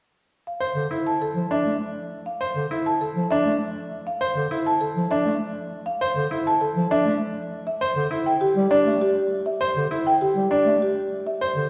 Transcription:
0.47 marimba F5
0.60 grand piano C5
0.76 bass clarinet D3
0.91 grand piano E4
1.07 marimba A5
1.22 marimba A4
1.36 bass clarinet F3
1.51 grand piano D4, marimba E5
1.66 bass clarinet A3
2.26 marimba F5
2.41 grand piano C5
2.56 bass clarinet D3
2.71 grand piano E4
2.86 marimba A5
3.01 marimba A4
3.16 bass clarinet F3
3.31 grand piano D4, marimba E5
3.46 bass clarinet A3
4.07 marimba F5
4.21 grand piano C5
4.36 bass clarinet D3
4.51 grand piano E4
4.66 marimba A5
4.81 marimba A4
4.97 bass clarinet F3
5.11 grand piano D4, marimba E5
5.26 bass clarinet A3
5.86 marimba F5
6.01 grand piano C5
6.16 bass clarinet D3
6.31 grand piano E4
6.47 marimba A5
6.61 marimba A4
6.76 bass clarinet F3
6.91 grand piano D4, marimba E5
7.06 bass clarinet A3
7.67 marimba E5
7.81 grand piano C5
7.96 bass clarinet D3
8.11 grand piano E4
8.26 marimba G5
8.41 marimba G4
8.56 bass clarinet G3
8.71 grand piano D4, marimba D5
8.86 bass clarinet A3
9.01 marimba G4
9.46 marimba E5
9.61 grand piano C5
9.77 bass clarinet D3
9.91 grand piano E4
10.07 marimba G5
10.21 marimba G4
10.36 bass clarinet G3
10.51 grand piano D4, marimba D5
10.66 bass clarinet A3
10.82 marimba G4
11.27 marimba E5
11.41 grand piano C5
11.56 bass clarinet D3

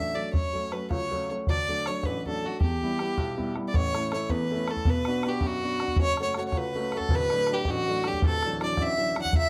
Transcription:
Already playing: upright piano A1 F#3 A3 D4, fiddle E5
0.00 bodhran
0.15 upright piano F#3 A3 D4, fiddle D5
0.33 upright piano F#2, fiddle C#5, bodhran
0.53 upright piano F#3 A3 C#4, bodhran
0.72 upright piano F#3 A3 C#4, fiddle B4, bodhran
0.90 upright piano C#2, fiddle C#5, bodhran
1.11 upright piano F#3 A3 C#4, bodhran
1.30 upright piano F#3 A3 C#4
1.47 upright piano D2, fiddle D5, bodhran
1.68 upright piano F#3 A3 D4, bodhran
1.86 upright piano F#3 A3 D4, fiddle C#5, bodhran
2.03 upright piano A1, fiddle B4, bodhran
2.26 upright piano F#3 A3 D4, fiddle A4, bodhran
2.44 upright piano F#3 A3 D4, fiddle F#4
2.61 upright piano E2, fiddle G4, bodhran
2.82 upright piano G3 B3 E4, bodhran
2.99 upright piano G3 B3 E4, bodhran
3.18 upright piano B1, bodhran
3.37 upright piano G3 B3 E4, bodhran
3.56 upright piano G3 B3 E4, bodhran
3.68 fiddle D5
3.74 upright piano A1 A2, fiddle C#5, bodhran
3.94 upright piano A3 C#4 E4, bodhran
4.12 upright piano A3 C#4 E4, fiddle C#5, bodhran
4.29 upright piano E2, fiddle B4, bodhran
4.51 upright piano A3 C#4 E4
4.67 upright piano A3 C#4 E4, fiddle A4, bodhran
4.76 bodhran
4.85 upright piano B1 B2, bodhran
4.90 fiddle B4
5.05 upright piano B3 D4 F#4, bodhran
5.23 upright piano B3 D4 F#4, bodhran
5.28 fiddle G4
5.41 upright piano F#2, bodhran
5.46 fiddle F#4
5.63 upright piano B3 D4 F#4
5.80 upright piano B3 D4 F#4, bodhran
5.88 bodhran
5.96 upright piano F#1 F#2, bodhran
6.01 fiddle C#5
6.17 upright piano A3 C#4 F#4, bodhran
6.23 fiddle C#5
6.34 upright piano A3 C#4 F#4, fiddle C#5, bodhran
6.48 fiddle C#5
6.52 upright piano C#2, bodhran
6.57 fiddle B4
6.75 upright piano A3 C#4 F#4
6.92 upright piano A3 C#4 F#4, bodhran
6.97 fiddle A4, bodhran
7.09 upright piano D1 D2, bodhran
7.15 fiddle B4
7.30 upright piano F#3 A3 D4, bodhran
7.47 upright piano F#3 A3 D4, bodhran
7.54 fiddle G4
7.65 upright piano A1, bodhran
7.70 fiddle F#4
7.88 upright piano F#3 A3 D4
8.04 upright piano F#3 A3 D4, fiddle G4, bodhran
8.13 bodhran
8.22 upright piano D1 D2, fiddle A4, bodhran
8.42 upright piano E3 F#3 D4, bodhran
8.61 upright piano E3 F#3 D4, fiddle D5, bodhran
8.77 upright piano A1, bodhran
8.82 fiddle E5
8.98 upright piano E3 F#3 D4
9.16 upright piano E3 F#3 D4, bodhran
9.22 fiddle F#5, bodhran
9.33 upright piano C#2, bodhran
9.37 fiddle E5

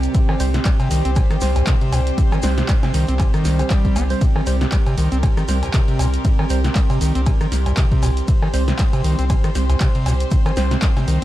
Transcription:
Already playing: string section C3 G3 G4 A#4, ambient pad C4 G4 G5
0.03 closed hi-hat, shekere
0.14 acid bass C3, string section C5, kick, closed hi-hat, ride, shekere
0.29 acid bass D#3, cross-stick, cowbell
0.40 analog synth bass C2, synth stab G3 C4 C5, open hi-hat, shekere
0.54 acid bass C3, snare, closed hi-hat, shekere
0.65 acid bass G3, kick, clap, closed hi-hat, ride, shekere
0.80 acid bass C3, closed hi-hat, cowbell, shekere
0.91 analog synth bass C2, acid bass D#3, open hi-hat, shekere
1.05 analog synth bass C2, acid bass C4, closed hi-hat, shekere
1.16 acid bass C3, kick, closed hi-hat, ride, cowbell, shekere
1.31 acid bass D#3, cross-stick, closed hi-hat, shekere
1.41 analog synth bass C2, synth stab G3 C4 C5, snare, open hi-hat, shekere
1.55 acid bass C2, closed hi-hat, cowbell, shekere
1.67 acid bass C3, kick, clap, closed hi-hat, ride, shekere
1.81 acid bass C3, closed hi-hat
1.93 analog synth bass C2, acid bass A#2, open hi-hat, cowbell, shekere
2.07 closed hi-hat, shekere
2.18 acid bass C3, kick, closed hi-hat, ride, shekere
2.32 acid bass D#3, cross-stick, cowbell, shekere
2.42 analog synth bass C2, synth stab G3 C4 C5, snare, open hi-hat, shekere
2.57 acid bass C3, snare, closed hi-hat, shekere
2.68 acid bass G3, kick, clap, closed hi-hat, ride, shekere
2.83 acid bass C3, snare, closed hi-hat, cowbell, shekere
2.94 analog synth bass C2, acid bass D#3, open hi-hat, shekere
3.08 analog synth bass C2, acid bass C4, closed hi-hat, shekere
3.19 acid bass C3, kick, clap, closed hi-hat, ride, cowbell, shekere
3.34 acid bass D#3, cross-stick, closed hi-hat, shekere
3.45 analog synth bass C2, snare, open hi-hat, shekere
3.59 acid bass C3, synth stab G3 C4 C5, closed hi-hat, cowbell, shekere
3.70 acid bass G3, kick, clap, closed hi-hat, ride, shekere
3.85 kick, closed hi-hat
3.96 analog synth bass C2, acid bass C4, open hi-hat, cowbell, shekere
4.10 synth stab G3 C4 C5, open hi-hat, shekere
4.21 acid bass C3, string section A#4, kick, closed hi-hat, ride, shekere
4.36 acid bass D#3, cross-stick, cowbell
4.42 ambient pad C6
4.46 analog synth bass C2, synth stab G3 C4 C5, open hi-hat, shekere
4.61 acid bass C3, snare, closed hi-hat, shekere
4.72 acid bass G3, kick, clap, closed hi-hat, ride, shekere
4.87 acid bass C3, closed hi-hat, cowbell, shekere
4.98 analog synth bass C2, acid bass D#3, open hi-hat, shekere
5.12 analog synth bass C2, acid bass C4, closed hi-hat, shekere
5.23 acid bass C3, kick, closed hi-hat, ride, cowbell, shekere
5.37 acid bass D#3, cross-stick, closed hi-hat, shekere
5.48 analog synth bass C2, synth stab G3 C4 C5, snare, open hi-hat, shekere
5.63 acid bass C2, closed hi-hat, cowbell, shekere
5.74 acid bass C3, kick, clap, closed hi-hat, ride, shekere
5.88 acid bass C3, closed hi-hat
5.99 analog synth bass C2, acid bass A#2, open hi-hat, cowbell, shekere
6.13 closed hi-hat, shekere
6.25 acid bass C3, kick, closed hi-hat, ride, shekere
6.39 acid bass D#3, cross-stick, cowbell
6.50 analog synth bass C2, synth stab G3 C4 C5, open hi-hat, shekere
6.64 acid bass C3, snare, closed hi-hat, shekere
6.75 acid bass G3, kick, clap, closed hi-hat, ride, shekere
6.90 acid bass C3, closed hi-hat, cowbell, shekere
7.01 analog synth bass C2, acid bass D#3, open hi-hat, shekere
7.15 analog synth bass C2, acid bass C4, closed hi-hat, shekere
7.26 acid bass C3, kick, closed hi-hat, ride, cowbell, shekere
7.41 acid bass D#3, cross-stick, closed hi-hat, shekere
7.52 analog synth bass C2, snare, open hi-hat, shekere
7.66 acid bass C2, closed hi-hat, cowbell, shekere
7.77 acid bass C3, kick, clap, closed hi-hat, ride, shekere
7.92 acid bass C3, kick, closed hi-hat
8.03 analog synth bass C2, acid bass A#2, open hi-hat, cowbell, shekere
8.17 closed hi-hat, shekere
8.28 acid bass C3, string section C5, kick, closed hi-hat, ride, shekere
8.42 acid bass D#3, cross-stick, cowbell
8.54 analog synth bass C2, synth stab G3 C4 C5, open hi-hat, shekere
8.68 acid bass C3, snare, closed hi-hat, shekere
8.78 acid bass G3, kick, clap, closed hi-hat, ride, shekere
8.93 acid bass C3, closed hi-hat, cowbell, shekere
9.04 analog synth bass C2, acid bass D#3, open hi-hat, shekere
9.19 analog synth bass C2, acid bass C4, closed hi-hat, shekere
9.30 acid bass C3, kick, closed hi-hat, ride, cowbell, shekere
9.44 acid bass D#3, cross-stick, closed hi-hat, shekere
9.55 analog synth bass C2, synth stab G3 C4 C5, snare, open hi-hat, shekere
9.70 acid bass C2, closed hi-hat, cowbell, shekere
9.80 acid bass C3, kick, clap, closed hi-hat, ride, shekere
9.95 acid bass C3, closed hi-hat
10.06 analog synth bass C2, acid bass A#2, open hi-hat, cowbell, shekere
10.20 closed hi-hat, shekere
10.31 acid bass C3, kick, closed hi-hat, ride, shekere
10.46 acid bass D#3, cross-stick, closed hi-hat, cowbell, shekere
10.57 analog synth bass C2, synth stab G3 C4 C5, snare, open hi-hat, shekere
10.71 acid bass C3, snare, closed hi-hat, shekere
10.82 acid bass G3, kick, clap, closed hi-hat, ride, shekere
10.97 acid bass C3, snare, closed hi-hat, cowbell, shekere
11.08 analog synth bass C2, acid bass D#3, open hi-hat, shekere

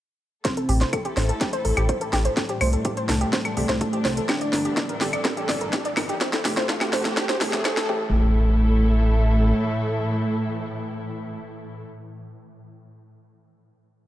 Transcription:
0.45 synth drone A2 E3, string section A3 E4 A4, analog synth lead C4, synth pluck C5, kick, snare, closed hi-hat, riser
0.57 synth pluck A4, closed hi-hat
0.69 analog synth bass A1, synth pluck G4, open hi-hat
0.81 synth pluck C5, snare, closed hi-hat
0.93 synth pluck A4, kick, closed hi-hat, claves
1.05 synth pluck G4, closed hi-hat
1.17 analog synth bass A1, synth pluck C5, snare, open hi-hat
1.29 synth pluck A4, closed hi-hat
1.41 synth pluck G4, kick, snare, closed hi-hat
1.53 synth pluck C5, closed hi-hat
1.65 analog synth bass A1, synth pluck A4, open hi-hat
1.77 analog synth bass A1, synth pluck G4, closed hi-hat, claves
1.89 synth pluck C5, kick, closed hi-hat
2.01 synth pluck A4, closed hi-hat
2.13 analog synth bass A1, synth pluck G4, snare, open hi-hat
2.25 synth pluck C5, closed hi-hat
2.37 string section C3 G3 D4, synth pluck A4, kick, snare, closed hi-hat
2.49 synth pluck G4, closed hi-hat
2.61 analog synth bass C2, analog synth lead A3, synth pluck C5, open hi-hat, claves
2.73 synth pluck A4, closed hi-hat
2.85 synth pluck G4, kick, closed hi-hat
2.97 synth pluck C5, closed hi-hat
3.09 analog synth bass C2, synth pluck A4, snare, open hi-hat
3.21 synth pluck G4, closed hi-hat
3.33 synth pluck C5, kick, snare, closed hi-hat
3.45 synth pluck A4, closed hi-hat, claves
3.57 analog synth bass C2, analog synth lead A3, synth pluck G4, open hi-hat
3.69 analog synth bass C2, synth pluck C5, snare, closed hi-hat
3.81 synth pluck A4, kick, closed hi-hat
3.93 synth pluck G4, closed hi-hat
4.05 analog synth bass C2, synth pluck C5, snare, open hi-hat
4.17 synth pluck A4, closed hi-hat
4.29 analog synth lead D4, synth pluck G4, string section A4, kick, snare, closed hi-hat, claves
4.41 synth pluck D5, closed hi-hat
4.53 analog synth bass G1, synth pluck A#4, snare, open hi-hat
4.65 synth pluck G4, closed hi-hat
4.77 synth pluck D5, kick, snare, closed hi-hat
4.89 synth pluck A#4, closed hi-hat
5.01 analog synth bass G1, synth pluck G4, snare, open hi-hat
5.13 synth pluck D5, closed hi-hat, claves
5.25 synth pluck A#4, kick, snare, closed hi-hat
5.37 synth pluck G4, closed hi-hat
5.49 analog synth bass G1, synth pluck D5, snare, open hi-hat
5.61 analog synth bass G1, synth pluck A#4, closed hi-hat
5.73 synth pluck G4, kick, snare, closed hi-hat
5.85 synth pluck D5, closed hi-hat
5.97 analog synth bass G1, synth pluck A#4, snare, open hi-hat, claves
6.09 synth pluck G4, closed hi-hat
6.21 string section C4 G4, synth pluck C5, kick, snare, closed hi-hat
6.33 synth pluck A4, snare, closed hi-hat
6.45 analog synth bass F1, analog synth lead A3, synth pluck G4, snare, open hi-hat
6.57 synth pluck C5, snare, closed hi-hat
6.69 synth pluck A4, kick, snare, closed hi-hat
6.81 synth pluck G4, snare, closed hi-hat, claves
6.93 analog synth bass F1, synth pluck C5, snare, open hi-hat
7.05 synth pluck A4, snare, closed hi-hat
7.17 synth pluck G4, kick, snare, closed hi-hat
7.29 synth pluck C5, snare, closed hi-hat
7.41 analog synth bass C2, analog synth lead A3, synth pluck A4, snare, open hi-hat
7.53 analog synth bass F1, synth pluck G4, snare, closed hi-hat
7.65 synth pluck C5, kick, snare, closed hi-hat, claves
7.77 synth pluck A4, snare, closed hi-hat
7.89 analog synth bass A1, synth drone A2 E3, string section A3 E4 A4, analog synth lead A3, synth pluck G4, kick, impact

